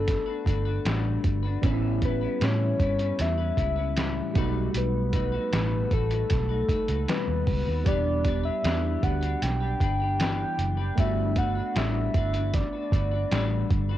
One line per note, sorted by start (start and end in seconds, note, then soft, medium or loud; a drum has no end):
0.00 0.15 G1 medium
0.00 1.58 A3 medium
0.00 1.61 B3 medium
0.00 0.28 D4 soft
0.00 1.60 D4 medium
0.00 0.26 F#4 soft
0.00 1.60 F#4 medium
0.00 0.86 A4 loud
0.00 0.25 B4 medium
0.08 kick loud
0.08 snare soft
0.08 closed hi-hat loud
0.26 0.46 D4 soft
0.26 0.47 F#4 soft
0.26 0.46 B4 medium
0.46 0.77 G1 medium
0.46 0.66 A3 medium
0.46 0.66 D4 medium
0.46 0.66 F#4 medium
0.46 0.64 B4 medium
0.46 kick medium
0.46 closed hi-hat medium
0.65 0.85 D4 soft
0.65 0.86 F#4 medium
0.65 0.85 B4 medium
0.85 1.16 A1 medium
0.85 1.44 G3 medium
0.85 1.44 A3 medium
0.85 1.44 D4 medium
0.85 1.44 F#4 medium
0.85 1.41 B4 medium
0.85 snare loud
0.85 closed hi-hat medium
1.24 1.55 G1 medium
1.24 kick medium
1.24 closed hi-hat medium
1.43 1.64 F#4 medium
1.43 1.63 B4 medium
1.47 1.64 D4 medium
1.61 2.25 A1 loud
1.61 2.02 A2 medium
1.61 2.02 E3 loud
1.61 4.31 G3 medium
1.61 2.01 G3 loud
1.61 4.31 B3 medium
1.61 4.32 C#4 medium
1.61 2.02 C#4 loud
1.61 2.03 E4 loud
1.61 kick loud
1.61 closed hi-hat medium
1.66 1.71 D4 medium
1.66 2.03 B4 loud
1.73 4.37 E4 medium
2.02 2.21 G3 medium
2.02 2.22 C#4 medium
2.02 2.21 E4 medium
2.02 2.45 B4 medium
2.02 2.20 B4 medium
2.02 kick medium
2.02 closed hi-hat medium
2.21 2.41 G3 soft
2.21 2.41 C#4 soft
2.21 2.41 E4 medium
2.21 2.41 B4 medium
2.41 2.80 A2 medium
2.41 2.72 A2 loud
2.41 2.80 E3 medium
2.41 2.78 G3 medium
2.41 2.80 C#4 medium
2.41 2.81 E4 medium
2.41 2.81 B4 medium
2.41 3.23 C#5 loud
2.41 snare loud
2.41 closed hi-hat medium
2.79 3.11 G2 medium
2.79 2.99 G3 medium
2.79 3.00 C#4 medium
2.79 2.99 E4 medium
2.79 kick medium
2.79 closed hi-hat medium
2.83 2.97 B4 medium
2.99 3.40 G3 soft
2.99 3.39 C#4 medium
2.99 3.38 E4 medium
2.99 3.37 B4 medium
2.99 closed hi-hat soft
3.19 3.50 E2 medium
3.19 4.37 E5 loud
3.19 snare soft
3.19 closed hi-hat medium
3.38 3.55 G3 soft
3.38 3.57 C#4 soft
3.38 3.58 E4 soft
3.38 3.58 B4 medium
3.57 4.20 C#2 medium
3.57 3.77 G3 medium
3.57 3.77 C#4 medium
3.57 3.76 E4 medium
3.57 3.75 B4 medium
3.57 kick medium
3.57 closed hi-hat medium
3.76 3.96 G3 soft
3.76 3.96 C#4 soft
3.76 3.97 E4 soft
3.76 3.96 B4 medium
3.96 4.34 A2 medium
3.96 4.35 E3 medium
3.96 4.34 G3 medium
3.96 4.36 C#4 medium
3.96 4.36 E4 medium
3.96 4.37 B4 medium
3.96 snare loud
3.96 closed hi-hat medium
4.34 4.67 B1 loud
4.34 5.13 B2 medium
4.34 7.42 G3 medium
4.34 5.16 G3 medium
4.34 7.43 A3 medium
4.34 5.11 A3 medium
4.34 5.13 D#4 medium
4.34 7.44 D#4 medium
4.34 5.14 F#4 medium
4.34 kick loud
4.34 closed hi-hat medium
4.38 7.45 F#4 medium
4.38 5.16 B4 loud
4.75 5.37 B1 loud
4.75 5.94 B4 loud
4.75 closed hi-hat medium
5.13 5.33 A3 medium
5.13 5.33 D#4 medium
5.13 5.33 F#4 medium
5.13 5.31 B4 medium
5.13 kick medium
5.13 closed hi-hat medium
5.32 5.52 A3 soft
5.32 5.52 D#4 medium
5.32 5.53 F#4 medium
5.32 5.52 B4 medium
5.52 5.84 A1 medium
5.52 5.91 B2 medium
5.52 5.92 G3 medium
5.52 5.89 A3 medium
5.52 5.91 D#4 medium
5.52 5.92 F#4 medium
5.52 5.93 B4 medium
5.52 snare loud
5.52 closed hi-hat medium
5.90 6.23 A1 loud
5.90 6.10 A3 medium
5.90 6.11 D#4 medium
5.90 6.11 F#4 medium
5.90 7.09 A4 loud
5.90 kick medium
5.90 closed hi-hat medium
5.95 6.09 B4 medium
6.10 6.51 A3 soft
6.10 6.50 D#4 soft
6.10 6.49 F#4 medium
6.10 6.48 B4 medium
6.10 closed hi-hat soft
6.30 6.62 B1 medium
6.30 kick loud
6.30 snare soft
6.30 closed hi-hat loud
6.49 6.67 A3 soft
6.49 6.69 D#4 soft
6.49 6.70 F#4 soft
6.49 6.69 B4 soft
6.68 6.88 A3 soft
6.68 6.89 D#4 medium
6.68 6.89 F#4 medium
6.68 6.87 B4 medium
6.68 muted fingered electric bass stroke soft
6.68 kick medium
6.68 closed hi-hat medium
6.88 7.04 C#2 medium
6.88 7.08 A3 soft
6.88 7.09 D#4 soft
6.88 7.09 F#4 soft
6.88 7.08 B4 soft
6.88 closed hi-hat medium
7.08 7.66 B2 medium
7.08 7.67 G3 medium
7.08 7.67 A3 medium
7.08 7.67 D#4 medium
7.08 7.66 F#4 medium
7.08 7.89 B4 medium
7.08 7.65 B4 medium
7.08 snare loud
7.08 closed hi-hat medium
7.28 7.43 D#2 medium
7.47 7.63 C#2 medium
7.47 kick medium
7.47 open hi-hat soft
7.66 7.83 D#2 medium
7.66 7.86 A3 soft
7.66 7.86 D#4 soft
7.66 7.86 F#4 soft
7.66 7.86 B4 medium
7.84 8.48 E1 loud
7.84 8.25 E3 medium
7.84 10.93 G3 medium
7.84 10.93 B3 medium
7.84 8.23 B3 medium
7.84 8.25 D4 medium
7.84 10.94 D4 medium
7.84 8.26 G4 loud
7.84 8.44 D5 loud
7.84 kick loud
7.84 closed hi-hat medium
7.88 10.95 G4 medium
7.88 8.26 B4 loud
8.24 8.44 B3 medium
8.24 8.45 D4 medium
8.24 8.44 G4 medium
8.24 8.42 B4 medium
8.24 kick medium
8.24 closed hi-hat medium
8.43 8.63 D4 soft
8.43 8.64 G4 soft
8.43 8.64 B4 medium
8.43 9.05 E5 loud
8.63 8.95 E2 loud
8.63 9.03 E3 medium
8.63 9.01 B3 medium
8.63 9.02 D4 medium
8.63 9.04 G4 medium
8.63 9.04 B4 medium
8.63 snare loud
8.63 closed hi-hat medium
9.02 9.34 D2 loud
9.02 9.22 B3 medium
9.02 9.23 D4 medium
9.02 9.22 G4 medium
9.02 9.20 B4 medium
9.02 9.44 F#5 loud
9.02 kick medium
9.02 closed hi-hat medium
9.21 9.63 D4 soft
9.21 9.61 G4 medium
9.21 9.59 B4 medium
9.21 closed hi-hat soft
9.42 9.73 B1 medium
9.42 10.20 G5 loud
9.42 snare soft
9.42 closed hi-hat loud
9.60 9.80 D4 soft
9.60 9.81 G4 soft
9.60 9.80 B4 soft
9.80 10.43 G1 medium
9.80 10.00 B3 medium
9.80 10.01 D4 medium
9.80 10.00 G4 medium
9.80 9.99 B4 medium
9.80 kick medium
9.80 closed hi-hat medium
10.00 10.19 D4 soft
10.00 10.20 G4 medium
10.00 10.20 B4 soft
10.19 10.78 E3 medium
10.19 10.78 B3 medium
10.19 10.79 D4 medium
10.19 10.78 G4 medium
10.19 10.76 B4 medium
10.19 11.01 G5 loud
10.19 snare loud
10.19 closed hi-hat medium
10.59 10.90 F#1 medium
10.59 closed hi-hat medium
10.77 10.98 D4 soft
10.77 10.98 G4 soft
10.77 10.97 B4 medium
10.96 11.60 G1 loud
10.96 11.37 G3 medium
10.96 13.98 A3 medium
10.96 11.34 A3 medium
10.96 13.98 B3 medium
10.96 11.36 D4 medium
10.96 13.98 D4 medium
10.96 11.37 F#4 medium
10.96 11.40 E5 loud
10.96 kick loud
10.96 closed hi-hat medium
11.00 13.98 F#4 medium
11.00 11.38 B4 loud
11.36 11.56 A3 medium
11.36 11.56 D4 medium
11.36 11.56 F#4 medium
11.36 11.54 B4 medium
11.36 11.79 F#5 loud
11.36 kick medium
11.36 closed hi-hat medium
11.55 11.75 D4 soft
11.55 11.76 F#4 soft
11.55 11.75 B4 soft
11.75 12.07 A1 medium
11.75 12.14 G3 medium
11.75 12.12 A3 medium
11.75 12.14 D4 medium
11.75 12.15 F#4 medium
11.75 12.15 B4 medium
11.75 12.56 E5 loud
11.75 snare loud
11.75 closed hi-hat medium
12.14 12.61 G1 loud
12.14 12.34 A3 medium
12.14 12.34 D4 medium
12.14 12.34 F#4 medium
12.14 12.32 B4 medium
12.14 kick loud
12.14 closed hi-hat medium
12.33 12.75 D4 soft
12.33 12.73 F#4 soft
12.33 12.71 B4 medium
12.33 closed hi-hat soft
12.54 13.71 D5 loud
12.54 kick loud
12.54 snare soft
12.54 closed hi-hat loud
12.73 12.92 D4 soft
12.73 12.93 F#4 medium
12.73 12.92 B4 soft
12.91 13.23 G1 medium
12.91 13.11 A3 soft
12.91 13.12 D4 medium
12.91 13.12 F#4 medium
12.91 kick medium
12.91 closed hi-hat medium
12.95 13.10 B4 medium
13.11 13.31 D4 soft
13.11 13.31 F#4 medium
13.11 13.31 B4 medium
13.31 13.63 A1 medium
13.31 13.89 G3 medium
13.31 13.90 A3 medium
13.31 13.90 D4 medium
13.31 13.90 F#4 medium
13.31 13.88 B4 medium
13.31 snare loud
13.31 closed hi-hat medium
13.70 13.98 G1 medium
13.70 kick medium
13.70 closed hi-hat medium
13.89 13.98 D4 soft
13.89 13.98 F#4 medium
13.89 13.98 B4 medium